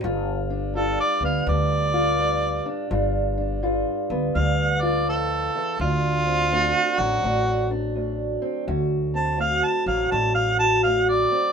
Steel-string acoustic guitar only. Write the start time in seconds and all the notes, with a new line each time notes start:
0.04 G2 F4
0.50 D4
0.75 G2 F4
1.22 B3
1.46 G2
1.94 F4
2.18 G2
2.66 D4
2.91 G2 F4
3.38 D4
3.63 G2 F4
4.11 B3
4.35 G2
4.82 F4
5.08 F2
5.55 E2
5.81 D2 D4
6.26 C4
6.51 D2 D4
6.97 F#3
7.23 D2
7.71 D4
7.95 D2
8.42 C4
8.67 D2 F#4
9.15 C4
9.38 D2 F#4
9.87 F#3
10.12 D2
10.60 F#4
10.86 D2
11.32 C4